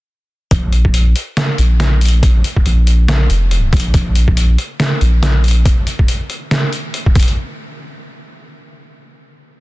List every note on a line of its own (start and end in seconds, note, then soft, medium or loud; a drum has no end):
0.51 1.14 A#1 loud
0.51 kick loud
0.51 closed hi-hat medium
0.72 closed hi-hat medium
0.85 kick medium
0.94 closed hi-hat medium
1.16 closed hi-hat medium
1.37 snare loud
1.37 closed hi-hat medium
1.58 2.43 A#1 loud
1.58 closed hi-hat medium
1.80 snare medium
1.80 closed hi-hat medium
2.01 closed hi-hat medium
2.05 closed hi-hat medium
2.09 closed hi-hat medium
2.23 kick loud
2.23 closed hi-hat medium
2.44 closed hi-hat medium
2.56 kick medium
2.66 3.28 A#1 loud
2.66 closed hi-hat medium
2.87 closed hi-hat medium
3.08 snare loud
3.08 closed hi-hat medium
3.30 3.71 F1 loud
3.30 closed hi-hat medium
3.51 closed hi-hat medium
3.73 3.93 A#1 loud
3.73 kick loud
3.73 closed hi-hat medium
3.77 closed hi-hat medium
3.80 closed hi-hat medium
3.94 4.57 A#1 loud
3.94 kick loud
3.94 closed hi-hat medium
4.15 closed hi-hat medium
4.28 kick medium
4.37 closed hi-hat medium
4.58 closed hi-hat medium
4.80 snare loud
4.80 closed hi-hat medium
5.01 5.64 A#1 loud
5.01 closed hi-hat medium
5.23 snare medium
5.23 closed hi-hat medium
5.44 closed hi-hat medium
5.48 closed hi-hat medium
5.51 closed hi-hat medium
5.66 kick loud
5.66 closed hi-hat medium
5.87 closed hi-hat medium
5.99 kick medium
6.08 closed hi-hat medium
6.30 closed hi-hat medium
6.51 snare loud
6.51 closed hi-hat medium
6.73 closed hi-hat soft
6.94 closed hi-hat medium
7.06 kick medium
7.15 kick loud
7.15 closed hi-hat soft
7.20 closed hi-hat medium
7.23 closed hi-hat medium
7.28 closed hi-hat soft